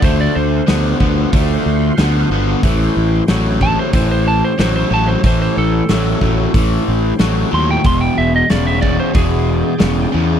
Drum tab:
HH |o-o-o-o-|o-o-o-o-|o-o-o-o-|o-o-o-o-|
SD |--o---o-|--o---o-|--o---o-|--o---o-|
BD |o--oo---|o--oo---|o--oo---|o--oo---|